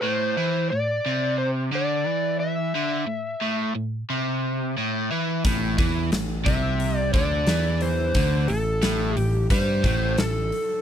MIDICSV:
0, 0, Header, 1, 5, 480
1, 0, Start_track
1, 0, Key_signature, 0, "minor"
1, 0, Tempo, 677201
1, 26, Time_signature, 4, 2, 24, 8
1, 7666, End_track
2, 0, Start_track
2, 0, Title_t, "Electric slide guitar"
2, 0, Program_c, 0, 29
2, 6, Note_on_c, 0, 72, 91
2, 495, Note_off_c, 0, 72, 0
2, 498, Note_on_c, 0, 74, 93
2, 953, Note_off_c, 0, 74, 0
2, 979, Note_on_c, 0, 72, 95
2, 1045, Note_off_c, 0, 72, 0
2, 1242, Note_on_c, 0, 74, 89
2, 1697, Note_off_c, 0, 74, 0
2, 1700, Note_on_c, 0, 76, 83
2, 2634, Note_off_c, 0, 76, 0
2, 4578, Note_on_c, 0, 76, 107
2, 4954, Note_off_c, 0, 76, 0
2, 4954, Note_on_c, 0, 74, 107
2, 5058, Note_off_c, 0, 74, 0
2, 5061, Note_on_c, 0, 74, 88
2, 5543, Note_on_c, 0, 72, 90
2, 5556, Note_off_c, 0, 74, 0
2, 6011, Note_on_c, 0, 69, 75
2, 6037, Note_off_c, 0, 72, 0
2, 6500, Note_off_c, 0, 69, 0
2, 6500, Note_on_c, 0, 67, 75
2, 6708, Note_off_c, 0, 67, 0
2, 6742, Note_on_c, 0, 72, 94
2, 7225, Note_on_c, 0, 69, 85
2, 7236, Note_off_c, 0, 72, 0
2, 7666, Note_off_c, 0, 69, 0
2, 7666, End_track
3, 0, Start_track
3, 0, Title_t, "Overdriven electric guitar"
3, 0, Program_c, 1, 29
3, 20, Note_on_c, 1, 45, 94
3, 256, Note_off_c, 1, 45, 0
3, 267, Note_on_c, 1, 52, 95
3, 499, Note_off_c, 1, 52, 0
3, 514, Note_on_c, 1, 45, 64
3, 702, Note_off_c, 1, 45, 0
3, 750, Note_on_c, 1, 48, 91
3, 1219, Note_off_c, 1, 48, 0
3, 1222, Note_on_c, 1, 50, 93
3, 1466, Note_off_c, 1, 50, 0
3, 1466, Note_on_c, 1, 52, 98
3, 1939, Note_off_c, 1, 52, 0
3, 1948, Note_on_c, 1, 50, 95
3, 2171, Note_off_c, 1, 50, 0
3, 2174, Note_on_c, 1, 45, 63
3, 2372, Note_off_c, 1, 45, 0
3, 2419, Note_on_c, 1, 45, 90
3, 2651, Note_off_c, 1, 45, 0
3, 2660, Note_on_c, 1, 45, 69
3, 2855, Note_off_c, 1, 45, 0
3, 2905, Note_on_c, 1, 48, 90
3, 3378, Note_off_c, 1, 48, 0
3, 3385, Note_on_c, 1, 45, 89
3, 3618, Note_off_c, 1, 45, 0
3, 3628, Note_on_c, 1, 52, 95
3, 3859, Note_off_c, 1, 52, 0
3, 3866, Note_on_c, 1, 45, 89
3, 4096, Note_off_c, 1, 45, 0
3, 4099, Note_on_c, 1, 52, 91
3, 4334, Note_off_c, 1, 52, 0
3, 4342, Note_on_c, 1, 45, 64
3, 4535, Note_off_c, 1, 45, 0
3, 4569, Note_on_c, 1, 48, 99
3, 5049, Note_off_c, 1, 48, 0
3, 5061, Note_on_c, 1, 50, 98
3, 5295, Note_off_c, 1, 50, 0
3, 5307, Note_on_c, 1, 52, 96
3, 5778, Note_off_c, 1, 52, 0
3, 5782, Note_on_c, 1, 50, 92
3, 6015, Note_off_c, 1, 50, 0
3, 6025, Note_on_c, 1, 45, 67
3, 6216, Note_off_c, 1, 45, 0
3, 6257, Note_on_c, 1, 45, 96
3, 6492, Note_off_c, 1, 45, 0
3, 6503, Note_on_c, 1, 45, 70
3, 6695, Note_off_c, 1, 45, 0
3, 6743, Note_on_c, 1, 55, 96
3, 6975, Note_off_c, 1, 55, 0
3, 6975, Note_on_c, 1, 45, 90
3, 7211, Note_off_c, 1, 45, 0
3, 7220, Note_on_c, 1, 45, 67
3, 7413, Note_off_c, 1, 45, 0
3, 7666, End_track
4, 0, Start_track
4, 0, Title_t, "Picked electric bass"
4, 0, Program_c, 2, 34
4, 3864, Note_on_c, 2, 33, 86
4, 4087, Note_off_c, 2, 33, 0
4, 4101, Note_on_c, 2, 40, 89
4, 4326, Note_off_c, 2, 40, 0
4, 4339, Note_on_c, 2, 33, 75
4, 4565, Note_off_c, 2, 33, 0
4, 4582, Note_on_c, 2, 36, 85
4, 5034, Note_off_c, 2, 36, 0
4, 5061, Note_on_c, 2, 38, 87
4, 5285, Note_off_c, 2, 38, 0
4, 5295, Note_on_c, 2, 40, 88
4, 5751, Note_off_c, 2, 40, 0
4, 5778, Note_on_c, 2, 38, 82
4, 6003, Note_off_c, 2, 38, 0
4, 6017, Note_on_c, 2, 33, 79
4, 6243, Note_off_c, 2, 33, 0
4, 6259, Note_on_c, 2, 33, 90
4, 6484, Note_off_c, 2, 33, 0
4, 6501, Note_on_c, 2, 33, 77
4, 6725, Note_off_c, 2, 33, 0
4, 6740, Note_on_c, 2, 43, 85
4, 6964, Note_off_c, 2, 43, 0
4, 6974, Note_on_c, 2, 33, 90
4, 7201, Note_off_c, 2, 33, 0
4, 7221, Note_on_c, 2, 33, 72
4, 7445, Note_off_c, 2, 33, 0
4, 7666, End_track
5, 0, Start_track
5, 0, Title_t, "Drums"
5, 3860, Note_on_c, 9, 46, 66
5, 3861, Note_on_c, 9, 36, 93
5, 3931, Note_off_c, 9, 46, 0
5, 3932, Note_off_c, 9, 36, 0
5, 4099, Note_on_c, 9, 46, 47
5, 4100, Note_on_c, 9, 36, 98
5, 4170, Note_off_c, 9, 46, 0
5, 4171, Note_off_c, 9, 36, 0
5, 4337, Note_on_c, 9, 46, 67
5, 4343, Note_on_c, 9, 38, 98
5, 4408, Note_off_c, 9, 46, 0
5, 4414, Note_off_c, 9, 38, 0
5, 4578, Note_on_c, 9, 46, 51
5, 4580, Note_on_c, 9, 36, 97
5, 4649, Note_off_c, 9, 46, 0
5, 4651, Note_off_c, 9, 36, 0
5, 4818, Note_on_c, 9, 46, 66
5, 4889, Note_off_c, 9, 46, 0
5, 5059, Note_on_c, 9, 36, 92
5, 5060, Note_on_c, 9, 46, 52
5, 5130, Note_off_c, 9, 36, 0
5, 5131, Note_off_c, 9, 46, 0
5, 5292, Note_on_c, 9, 46, 71
5, 5298, Note_on_c, 9, 38, 102
5, 5363, Note_off_c, 9, 46, 0
5, 5369, Note_off_c, 9, 38, 0
5, 5533, Note_on_c, 9, 46, 56
5, 5604, Note_off_c, 9, 46, 0
5, 5773, Note_on_c, 9, 46, 71
5, 5776, Note_on_c, 9, 36, 92
5, 5844, Note_off_c, 9, 46, 0
5, 5847, Note_off_c, 9, 36, 0
5, 6011, Note_on_c, 9, 46, 57
5, 6082, Note_off_c, 9, 46, 0
5, 6252, Note_on_c, 9, 46, 73
5, 6258, Note_on_c, 9, 38, 99
5, 6323, Note_off_c, 9, 46, 0
5, 6329, Note_off_c, 9, 38, 0
5, 6498, Note_on_c, 9, 46, 52
5, 6569, Note_off_c, 9, 46, 0
5, 6735, Note_on_c, 9, 36, 97
5, 6738, Note_on_c, 9, 46, 70
5, 6806, Note_off_c, 9, 36, 0
5, 6809, Note_off_c, 9, 46, 0
5, 6974, Note_on_c, 9, 36, 95
5, 6976, Note_on_c, 9, 46, 51
5, 7045, Note_off_c, 9, 36, 0
5, 7047, Note_off_c, 9, 46, 0
5, 7213, Note_on_c, 9, 46, 66
5, 7218, Note_on_c, 9, 38, 115
5, 7284, Note_off_c, 9, 46, 0
5, 7289, Note_off_c, 9, 38, 0
5, 7459, Note_on_c, 9, 46, 53
5, 7529, Note_off_c, 9, 46, 0
5, 7666, End_track
0, 0, End_of_file